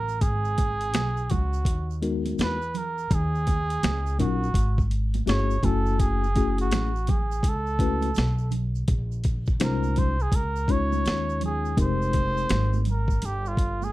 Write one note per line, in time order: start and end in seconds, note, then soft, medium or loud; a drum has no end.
0.00 0.18 A1 medium
0.00 0.23 A#4 loud
0.09 shaker soft
0.21 0.94 G#1 medium
0.21 1.32 G#4 loud
0.21 kick loud
0.21 closed hi-hat medium
0.21 shaker medium
0.45 shaker soft
0.58 kick medium
0.58 closed hi-hat medium
0.58 high conga soft
0.58 shaker soft
0.81 closed hi-hat medium
0.81 shaker soft
0.94 1.28 B1 loud
0.94 snare loud
0.94 closed hi-hat loud
0.94 low conga medium
0.94 shaker medium
1.17 shaker soft
1.30 1.65 C#2 medium
1.30 2.02 F#4 medium
1.30 kick medium
1.30 closed hi-hat medium
1.30 low conga medium
1.30 shaker soft
1.53 shaker medium
1.65 2.34 D#2 medium
1.65 kick loud
1.65 closed hi-hat loud
1.65 shaker medium
1.91 shaker soft
2.02 2.57 G#3 medium
2.02 2.57 B3 medium
2.02 2.57 D#4 medium
2.02 2.57 F#4 medium
2.02 2.57 A#4 medium
2.02 closed hi-hat medium
2.02 shaker soft
2.26 closed hi-hat medium
2.26 high conga medium
2.26 shaker soft
2.38 3.07 E2 medium
2.38 2.79 B4 loud
2.38 snare loud
2.38 closed hi-hat medium
2.38 high conga soft
2.38 shaker medium
2.62 shaker soft
2.74 3.16 A#4 loud
2.74 closed hi-hat medium
2.74 low conga medium
2.74 shaker soft
2.98 shaker soft
3.11 3.79 D#2 loud
3.11 4.20 G#4 loud
3.11 kick loud
3.11 closed hi-hat medium
3.11 shaker medium
3.35 shaker soft
3.47 kick medium
3.47 closed hi-hat medium
3.47 high conga soft
3.47 shaker soft
3.70 closed hi-hat medium
3.70 shaker soft
3.83 4.17 C#2 medium
3.83 snare loud
3.83 closed hi-hat loud
3.83 low conga medium
3.83 shaker medium
4.07 shaker soft
4.19 4.54 A#1 medium
4.19 4.47 F#3 medium
4.19 4.47 C#4 medium
4.19 4.47 D#4 medium
4.19 4.47 F4 medium
4.19 4.88 F#4 medium
4.19 4.48 A#4 medium
4.19 kick loud
4.19 closed hi-hat medium
4.19 low conga medium
4.19 shaker soft
4.43 shaker medium
4.54 5.24 G#1 medium
4.54 kick loud
4.54 closed hi-hat loud
4.54 shaker medium
4.78 kick medium
4.78 shaker soft
4.91 closed hi-hat medium
4.91 shaker soft
5.14 closed hi-hat medium
5.14 high conga medium
5.14 shaker soft
5.26 5.62 G1 medium
5.26 5.55 A3 medium
5.26 5.56 C#4 medium
5.26 5.55 E4 medium
5.26 5.56 F#4 medium
5.26 5.56 G#4 medium
5.26 5.66 C#5 loud
5.26 snare loud
5.26 closed hi-hat medium
5.26 high conga medium
5.26 shaker medium
5.51 shaker soft
5.63 6.72 F#1 loud
5.63 6.25 A3 medium
5.63 6.25 C#4 medium
5.63 6.25 E4 medium
5.63 6.26 F#4 medium
5.63 6.01 A4 loud
5.63 6.25 G#5 medium
5.63 kick medium
5.63 closed hi-hat medium
5.63 low conga medium
5.63 shaker soft
5.86 shaker soft
5.99 6.59 G#4 loud
5.99 kick loud
5.99 closed hi-hat medium
5.99 shaker medium
6.24 shaker soft
6.35 6.90 A3 medium
6.35 6.90 C#4 medium
6.35 6.90 E4 medium
6.35 6.91 F#4 medium
6.35 6.91 G#4 medium
6.35 kick medium
6.35 closed hi-hat medium
6.35 high conga soft
6.35 shaker soft
6.58 7.11 F#4 medium
6.58 closed hi-hat medium
6.58 shaker soft
6.71 7.41 A1 loud
6.71 snare loud
6.71 closed hi-hat loud
6.71 low conga medium
6.71 shaker medium
6.96 shaker soft
7.07 7.50 G#4 medium
7.07 kick loud
7.07 closed hi-hat medium
7.07 low conga medium
7.07 shaker soft
7.32 shaker medium
7.43 8.13 C#2 medium
7.43 kick loud
7.43 closed hi-hat loud
7.43 shaker medium
7.48 8.55 A4 loud
7.67 shaker soft
7.79 8.08 A3 medium
7.79 8.09 C#4 medium
7.79 8.09 E4 medium
7.79 8.09 F#4 medium
7.79 8.09 B4 medium
7.79 kick loud
7.79 closed hi-hat medium
7.79 shaker soft
8.02 closed hi-hat medium
8.02 high conga medium
8.02 shaker soft
8.15 8.86 B1 medium
8.15 snare loud
8.15 closed hi-hat medium
8.15 high conga medium
8.15 shaker medium
8.38 shaker soft
8.51 closed hi-hat medium
8.51 low conga medium
8.51 shaker soft
8.75 shaker soft
8.88 9.57 A#1 medium
8.88 kick loud
8.88 closed hi-hat medium
8.88 shaker medium
9.12 shaker soft
9.24 kick medium
9.24 closed hi-hat medium
9.24 shaker soft
9.46 kick medium
9.46 shaker soft
9.60 10.30 C2 medium
9.60 10.15 G#3 medium
9.60 10.15 C#4 medium
9.60 10.15 D#4 medium
9.60 10.15 F4 medium
9.60 10.16 C5 medium
9.60 snare loud
9.60 closed hi-hat loud
9.60 low conga medium
9.60 shaker medium
9.64 10.00 A#4 medium
9.83 high conga medium
9.83 shaker soft
9.96 10.23 C5 medium
9.96 kick medium
9.96 closed hi-hat medium
9.96 low conga medium
9.96 shaker soft
10.20 10.37 G#4 medium
10.20 shaker medium
10.32 11.01 C#2 loud
10.32 10.73 A#4 loud
10.32 kick medium
10.32 closed hi-hat loud
10.32 shaker medium
10.56 shaker soft
10.68 11.73 G#3 medium
10.68 11.73 C#4 medium
10.68 11.73 D#4 medium
10.68 11.73 F4 medium
10.68 11.73 C#5 medium
10.68 11.43 C#5 loud
10.68 kick medium
10.68 closed hi-hat medium
10.68 shaker soft
10.92 high conga medium
10.92 shaker soft
11.05 11.75 D#2 medium
11.05 snare loud
11.05 closed hi-hat medium
11.05 shaker medium
11.29 shaker soft
11.41 closed hi-hat medium
11.41 low conga medium
11.41 shaker soft
11.46 11.78 G#4 loud
11.65 shaker soft
11.77 12.46 F1 loud
11.77 12.81 G#3 medium
11.77 12.81 C4 medium
11.77 12.81 D#4 medium
11.77 12.81 G4 medium
11.77 12.81 A#4 medium
11.77 12.84 C5 loud
11.77 kick loud
11.77 closed hi-hat medium
11.77 shaker medium
12.02 shaker soft
12.13 kick medium
12.13 closed hi-hat medium
12.13 shaker soft
12.37 shaker soft
12.49 13.19 G#1 loud
12.49 snare loud
12.49 closed hi-hat loud
12.49 low conga medium
12.49 shaker medium
12.73 high conga medium
12.73 shaker soft
12.85 closed hi-hat medium
12.85 low conga medium
12.85 shaker soft
12.90 13.27 A#4 medium
13.08 kick medium
13.08 shaker medium
13.22 13.91 G1 medium
13.22 13.49 G4 loud
13.22 closed hi-hat loud
13.22 shaker medium
13.46 13.85 F4 medium
13.46 shaker soft
13.57 kick medium
13.57 closed hi-hat medium
13.57 shaker soft
13.82 13.92 G#4 medium
13.82 high conga medium
13.82 shaker soft